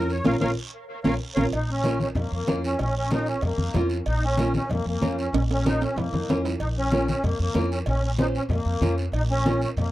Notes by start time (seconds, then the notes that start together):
Already playing: F2 C#4 F4 A#4
0.10 C#5, short guiro
0.24 A#1 C#4 F4 A#4 C#5 F5, high conga, high timbale, long guiro
0.40 A#1 C#4 F4 A#4 C#5 F5, high conga, high timbale, long guiro
1.04 A#1 C#4 F4 A#4 C#5 F5, high conga, high timbale, long guiro
1.35 A#1 C#4 F4 A#4 C#5 F5, high conga, high timbale, long guiro
1.52 A#1 D#4, cowbell, high conga, long guiro
1.71 C#4
1.84 C#4 F4 A#4, cowbell, high conga, short guiro
2.00 C#4, high conga, short guiro
2.15 F2 A#3, cowbell, high conga, low conga, long guiro
2.32 F2 A#3
2.47 F2 C#4 F4 A#4, cowbell, high conga, low timbale, short guiro
2.64 C#4, short guiro
2.79 A#1 C#4, cowbell, high conga, low conga, long guiro
2.96 C#4
3.11 C#4 D#4 F4 A#4, cowbell, high conga, short guiro
3.26 C#4, short guiro
3.41 F2 A#3, cowbell, high conga, low conga, long guiro
3.57 F2, high conga
3.73 F2 C#4 F4 A#4, cowbell, high conga, low conga, low timbale, short guiro
3.89 short guiro
4.06 A#1 D#4, cowbell, high conga, long guiro
4.24 C#4
4.37 C#4 F4 A#4, cowbell, high conga, short guiro
4.54 C#4, high conga, short guiro
4.69 F2 A#3, cowbell, high conga, low conga, long guiro
4.86 F2 A#3
5.01 F2 C#4 F4 A#4, cowbell, high conga, short guiro
5.18 C#4, short guiro
5.33 A#1 C#4, cowbell, high conga, low conga, high timbale, long guiro
5.51 C#4, high timbale
5.65 C#4 D#4 F4 A#4, cowbell, high conga, high timbale, short guiro
5.81 C#4, high timbale, short guiro
5.96 F2 A#3, cowbell, high conga, low conga, low timbale, long guiro
6.13 F2, high conga, low timbale
6.29 F2 C#4 F4 A#4, cowbell, high conga, low timbale, short guiro
6.45 low timbale, short guiro
6.60 A#1 D#4, cowbell, high conga, long guiro
6.78 C#4
6.92 C#4 F4 A#4, cowbell, high conga, short guiro
7.08 C#4, high conga, short guiro
7.24 F2 A#3, cowbell, high conga, low conga, long guiro
7.39 F2 A#3
7.54 F2 C#4 F4 A#4, cowbell, high conga, low timbale, short guiro
7.72 C#4, short guiro
7.86 A#1 C#4, cowbell, high conga, low conga, long guiro
8.04 C#4
8.19 C#4 D#4 F4 C5, cowbell, high conga, short guiro
8.35 C#4, short guiro
8.49 F2 A#3, cowbell, high conga, low conga, long guiro
8.65 F2
8.81 F2 C#4 F4 A#4, cowbell, high conga, low conga, short guiro
8.98 short guiro
9.12 A#1 D#4, cowbell, high conga, long guiro
9.30 C#4
9.45 C#4 F4 A#4, cowbell, high conga, short guiro
9.61 C#4, short guiro
9.77 F2 A#3, cowbell, high conga, low conga, long guiro